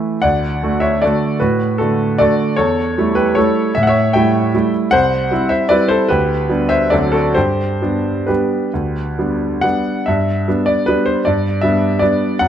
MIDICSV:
0, 0, Header, 1, 2, 480
1, 0, Start_track
1, 0, Tempo, 392413
1, 280, Time_signature, 3, 2, 24, 8
1, 7947, Tempo, 430416
1, 8907, Tempo, 462250
1, 10347, Tempo, 441826
1, 11787, Tempo, 389864
1, 14754, End_track
2, 0, Start_track
2, 0, Title_t, "Grand piano"
2, 0, Program_c, 0, 0
2, 0, Note_on_c, 0, 52, 32
2, 0, Note_on_c, 0, 57, 31
2, 0, Note_on_c, 0, 64, 32
2, 233, Note_off_c, 0, 52, 0
2, 236, Note_off_c, 0, 57, 0
2, 238, Note_off_c, 0, 64, 0
2, 264, Note_on_c, 0, 78, 69
2, 277, Note_on_c, 0, 74, 50
2, 288, Note_on_c, 0, 38, 40
2, 509, Control_c, 0, 64, 127
2, 753, Note_off_c, 0, 38, 0
2, 772, Note_on_c, 0, 50, 31
2, 776, Note_on_c, 0, 57, 33
2, 779, Note_on_c, 0, 66, 34
2, 954, Note_off_c, 0, 74, 0
2, 981, Note_on_c, 0, 76, 62
2, 996, Note_off_c, 0, 78, 0
2, 996, Note_on_c, 0, 73, 43
2, 1207, Note_off_c, 0, 50, 0
2, 1209, Note_off_c, 0, 57, 0
2, 1210, Note_off_c, 0, 66, 0
2, 1229, Note_off_c, 0, 73, 0
2, 1239, Note_off_c, 0, 76, 0
2, 1243, Note_on_c, 0, 74, 63
2, 1256, Note_on_c, 0, 69, 46
2, 1264, Note_on_c, 0, 50, 35
2, 1268, Control_c, 0, 64, 0
2, 1270, Note_on_c, 0, 57, 35
2, 1276, Note_on_c, 0, 66, 34
2, 1689, Note_off_c, 0, 50, 0
2, 1692, Note_off_c, 0, 57, 0
2, 1695, Note_off_c, 0, 66, 0
2, 1699, Note_off_c, 0, 69, 0
2, 1708, Note_on_c, 0, 71, 60
2, 1721, Note_on_c, 0, 66, 46
2, 1725, Note_off_c, 0, 74, 0
2, 1730, Note_on_c, 0, 45, 39
2, 1934, Control_c, 0, 64, 127
2, 2165, Note_off_c, 0, 66, 0
2, 2181, Note_on_c, 0, 69, 53
2, 2189, Note_off_c, 0, 45, 0
2, 2192, Note_off_c, 0, 71, 0
2, 2197, Note_on_c, 0, 66, 37
2, 2210, Note_on_c, 0, 50, 31
2, 2216, Note_on_c, 0, 57, 32
2, 2647, Note_off_c, 0, 50, 0
2, 2651, Note_off_c, 0, 57, 0
2, 2655, Note_off_c, 0, 66, 0
2, 2667, Note_off_c, 0, 69, 0
2, 2672, Note_on_c, 0, 74, 69
2, 2685, Note_on_c, 0, 69, 51
2, 2697, Note_on_c, 0, 50, 35
2, 2699, Note_on_c, 0, 57, 35
2, 2702, Control_c, 0, 64, 0
2, 2707, Note_on_c, 0, 66, 39
2, 3119, Note_off_c, 0, 50, 0
2, 3120, Note_off_c, 0, 57, 0
2, 3124, Note_off_c, 0, 66, 0
2, 3126, Note_off_c, 0, 69, 0
2, 3137, Note_on_c, 0, 73, 67
2, 3153, Note_off_c, 0, 74, 0
2, 3153, Note_on_c, 0, 69, 50
2, 3161, Note_on_c, 0, 40, 43
2, 3396, Control_c, 0, 64, 127
2, 3621, Note_off_c, 0, 40, 0
2, 3647, Note_on_c, 0, 55, 34
2, 3648, Note_on_c, 0, 57, 35
2, 3656, Note_on_c, 0, 64, 35
2, 3825, Note_off_c, 0, 69, 0
2, 3854, Note_on_c, 0, 71, 68
2, 3866, Note_off_c, 0, 73, 0
2, 3866, Note_on_c, 0, 67, 46
2, 4079, Note_off_c, 0, 55, 0
2, 4080, Note_off_c, 0, 57, 0
2, 4084, Note_off_c, 0, 64, 0
2, 4098, Note_on_c, 0, 73, 69
2, 4099, Note_off_c, 0, 67, 0
2, 4110, Note_off_c, 0, 71, 0
2, 4114, Note_on_c, 0, 69, 54
2, 4125, Note_on_c, 0, 55, 33
2, 4128, Note_on_c, 0, 57, 37
2, 4132, Control_c, 0, 64, 0
2, 4132, Note_on_c, 0, 64, 39
2, 4553, Note_off_c, 0, 55, 0
2, 4555, Note_off_c, 0, 57, 0
2, 4557, Note_off_c, 0, 64, 0
2, 4562, Note_off_c, 0, 69, 0
2, 4584, Note_on_c, 0, 76, 71
2, 4587, Note_off_c, 0, 73, 0
2, 4612, Note_on_c, 0, 45, 44
2, 4669, Note_off_c, 0, 76, 0
2, 4682, Note_on_c, 0, 78, 55
2, 4736, Note_on_c, 0, 76, 75
2, 4755, Note_on_c, 0, 73, 58
2, 4758, Note_off_c, 0, 78, 0
2, 4806, Control_c, 0, 64, 127
2, 5045, Note_off_c, 0, 73, 0
2, 5049, Note_off_c, 0, 76, 0
2, 5056, Note_on_c, 0, 79, 67
2, 5059, Note_off_c, 0, 45, 0
2, 5067, Note_on_c, 0, 76, 49
2, 5080, Note_on_c, 0, 55, 36
2, 5084, Note_on_c, 0, 57, 37
2, 5091, Note_on_c, 0, 64, 38
2, 5510, Note_off_c, 0, 55, 0
2, 5512, Note_off_c, 0, 57, 0
2, 5516, Note_off_c, 0, 64, 0
2, 5561, Note_on_c, 0, 55, 38
2, 5562, Control_c, 0, 64, 0
2, 5563, Note_on_c, 0, 57, 37
2, 5569, Note_on_c, 0, 64, 45
2, 5742, Note_off_c, 0, 76, 0
2, 5785, Note_off_c, 0, 79, 0
2, 5982, Note_off_c, 0, 55, 0
2, 5983, Note_off_c, 0, 57, 0
2, 5986, Note_off_c, 0, 64, 0
2, 6005, Note_on_c, 0, 78, 89
2, 6024, Note_on_c, 0, 72, 65
2, 6030, Note_on_c, 0, 36, 49
2, 6251, Control_c, 0, 64, 127
2, 6486, Note_off_c, 0, 36, 0
2, 6499, Note_on_c, 0, 55, 36
2, 6502, Note_on_c, 0, 60, 40
2, 6510, Control_c, 0, 64, 0
2, 6510, Note_on_c, 0, 64, 43
2, 6692, Note_off_c, 0, 72, 0
2, 6717, Note_on_c, 0, 76, 65
2, 6730, Note_on_c, 0, 72, 46
2, 6731, Note_off_c, 0, 78, 0
2, 6938, Note_off_c, 0, 55, 0
2, 6940, Note_off_c, 0, 60, 0
2, 6944, Note_off_c, 0, 64, 0
2, 6958, Note_on_c, 0, 74, 81
2, 6963, Note_off_c, 0, 72, 0
2, 6970, Note_on_c, 0, 71, 61
2, 6974, Note_off_c, 0, 76, 0
2, 6980, Note_on_c, 0, 55, 38
2, 6985, Note_on_c, 0, 60, 36
2, 6989, Note_on_c, 0, 64, 47
2, 7198, Note_on_c, 0, 72, 70
2, 7205, Note_off_c, 0, 71, 0
2, 7217, Note_off_c, 0, 74, 0
2, 7217, Note_on_c, 0, 69, 52
2, 7419, Note_off_c, 0, 55, 0
2, 7421, Note_off_c, 0, 60, 0
2, 7423, Note_off_c, 0, 64, 0
2, 7443, Note_on_c, 0, 71, 70
2, 7446, Note_off_c, 0, 69, 0
2, 7453, Note_off_c, 0, 72, 0
2, 7459, Note_on_c, 0, 67, 55
2, 7468, Note_on_c, 0, 38, 47
2, 7720, Control_c, 0, 64, 127
2, 7932, Note_off_c, 0, 38, 0
2, 7944, Note_on_c, 0, 55, 35
2, 7946, Note_on_c, 0, 59, 34
2, 7952, Note_on_c, 0, 62, 39
2, 8130, Note_off_c, 0, 67, 0
2, 8160, Note_on_c, 0, 76, 74
2, 8168, Note_off_c, 0, 71, 0
2, 8169, Note_on_c, 0, 72, 49
2, 8375, Note_off_c, 0, 55, 0
2, 8376, Note_off_c, 0, 59, 0
2, 8379, Note_off_c, 0, 62, 0
2, 8399, Note_off_c, 0, 72, 0
2, 8399, Note_on_c, 0, 74, 66
2, 8410, Note_on_c, 0, 69, 44
2, 8412, Note_off_c, 0, 76, 0
2, 8421, Note_on_c, 0, 38, 46
2, 8421, Note_on_c, 0, 54, 38
2, 8425, Note_on_c, 0, 60, 37
2, 8430, Note_on_c, 0, 62, 38
2, 8436, Control_c, 0, 64, 0
2, 8623, Note_off_c, 0, 69, 0
2, 8639, Note_on_c, 0, 69, 60
2, 8654, Note_off_c, 0, 74, 0
2, 8658, Note_on_c, 0, 66, 42
2, 8659, Control_c, 0, 64, 127
2, 8863, Note_off_c, 0, 54, 0
2, 8866, Note_off_c, 0, 60, 0
2, 8868, Note_off_c, 0, 62, 0
2, 8887, Note_off_c, 0, 66, 0
2, 8893, Note_off_c, 0, 38, 0
2, 8894, Note_on_c, 0, 72, 66
2, 8895, Note_off_c, 0, 69, 0
2, 8904, Note_on_c, 0, 67, 50
2, 8915, Note_on_c, 0, 43, 37
2, 8922, Control_c, 0, 64, 0
2, 9147, Control_c, 0, 64, 127
2, 9371, Note_off_c, 0, 43, 0
2, 9387, Note_on_c, 0, 55, 31
2, 9389, Note_on_c, 0, 59, 33
2, 9398, Note_on_c, 0, 62, 34
2, 9832, Note_off_c, 0, 67, 0
2, 9836, Note_off_c, 0, 55, 0
2, 9837, Note_off_c, 0, 59, 0
2, 9841, Note_off_c, 0, 62, 0
2, 9849, Note_on_c, 0, 71, 44
2, 9862, Note_on_c, 0, 67, 37
2, 9869, Note_off_c, 0, 72, 0
2, 9872, Note_on_c, 0, 55, 34
2, 9875, Note_on_c, 0, 59, 33
2, 9878, Note_on_c, 0, 62, 35
2, 9893, Control_c, 0, 64, 0
2, 10306, Note_off_c, 0, 55, 0
2, 10307, Note_off_c, 0, 59, 0
2, 10309, Note_off_c, 0, 62, 0
2, 10339, Note_on_c, 0, 38, 41
2, 10563, Control_c, 0, 64, 127
2, 10805, Note_off_c, 0, 38, 0
2, 10828, Note_on_c, 0, 55, 32
2, 10828, Note_on_c, 0, 59, 27
2, 10840, Note_on_c, 0, 62, 31
2, 11264, Note_off_c, 0, 67, 0
2, 11273, Note_off_c, 0, 55, 0
2, 11273, Note_off_c, 0, 59, 0
2, 11279, Note_off_c, 0, 62, 0
2, 11292, Note_on_c, 0, 78, 76
2, 11301, Note_off_c, 0, 71, 0
2, 11314, Note_on_c, 0, 55, 34
2, 11315, Note_on_c, 0, 59, 33
2, 11323, Note_on_c, 0, 62, 33
2, 11333, Control_c, 0, 64, 0
2, 11745, Note_off_c, 0, 55, 0
2, 11745, Note_off_c, 0, 59, 0
2, 11749, Note_off_c, 0, 62, 0
2, 11775, Note_on_c, 0, 76, 55
2, 11777, Note_off_c, 0, 78, 0
2, 11799, Note_on_c, 0, 43, 48
2, 12031, Control_c, 0, 64, 127
2, 12270, Note_off_c, 0, 43, 0
2, 12291, Control_c, 0, 64, 0
2, 12292, Note_on_c, 0, 55, 36
2, 12299, Note_on_c, 0, 59, 38
2, 12305, Note_on_c, 0, 62, 40
2, 12511, Note_on_c, 0, 74, 65
2, 12516, Note_off_c, 0, 76, 0
2, 12730, Note_off_c, 0, 55, 0
2, 12733, Note_off_c, 0, 59, 0
2, 12737, Note_off_c, 0, 62, 0
2, 12761, Note_on_c, 0, 71, 68
2, 12765, Note_off_c, 0, 74, 0
2, 12786, Note_on_c, 0, 55, 42
2, 12790, Note_on_c, 0, 59, 42
2, 12800, Note_on_c, 0, 62, 43
2, 13001, Note_on_c, 0, 72, 61
2, 13012, Note_off_c, 0, 71, 0
2, 13208, Note_off_c, 0, 55, 0
2, 13210, Note_off_c, 0, 59, 0
2, 13216, Note_off_c, 0, 62, 0
2, 13239, Note_off_c, 0, 72, 0
2, 13239, Note_on_c, 0, 74, 65
2, 13260, Note_on_c, 0, 43, 48
2, 13480, Control_c, 0, 64, 127
2, 13689, Note_on_c, 0, 76, 69
2, 13694, Note_off_c, 0, 43, 0
2, 13697, Note_off_c, 0, 74, 0
2, 13709, Note_on_c, 0, 55, 39
2, 13719, Note_on_c, 0, 59, 38
2, 13719, Note_on_c, 0, 62, 39
2, 14138, Note_off_c, 0, 55, 0
2, 14144, Note_off_c, 0, 59, 0
2, 14144, Note_off_c, 0, 62, 0
2, 14156, Note_on_c, 0, 74, 70
2, 14176, Note_off_c, 0, 76, 0
2, 14187, Note_on_c, 0, 55, 35
2, 14187, Note_on_c, 0, 59, 37
2, 14192, Control_c, 0, 64, 0
2, 14196, Note_on_c, 0, 62, 46
2, 14622, Note_off_c, 0, 55, 0
2, 14622, Note_off_c, 0, 59, 0
2, 14627, Note_off_c, 0, 62, 0
2, 14647, Note_on_c, 0, 78, 75
2, 14655, Note_off_c, 0, 74, 0
2, 14668, Note_on_c, 0, 42, 48
2, 14754, Note_off_c, 0, 42, 0
2, 14754, Note_off_c, 0, 78, 0
2, 14754, End_track
0, 0, End_of_file